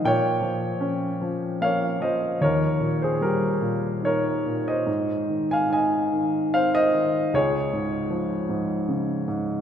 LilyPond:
<<
  \new Staff \with { instrumentName = "Grand piano" } { \time 3/4 \key aes \major \tempo 4 = 76 <des'' g''>2 <des'' f''>8 <c'' ees''>8 | <bes' des''>8. <aes' c''>16 <g' bes'>4 <bes' des''>8. <c'' ees''>16~ | <c'' ees''>8. <f'' aes''>16 <ees'' aes''>4 <c'' f''>16 <c'' ees''>8. | <aes' des''>2~ <aes' des''>8 r8 | }
  \new Staff \with { instrumentName = "Grand piano" } { \clef bass \time 3/4 \key aes \major bes,8 f8 des'8 f8 bes8 f8 | ees,8 bes,8 g8 bes,8 ees8 bes,8 | aes,8 ees8 ees'8 ees8 c'8 ees8 | des,8 aes,8 f8 aes,8 des8 aes,8 | }
>>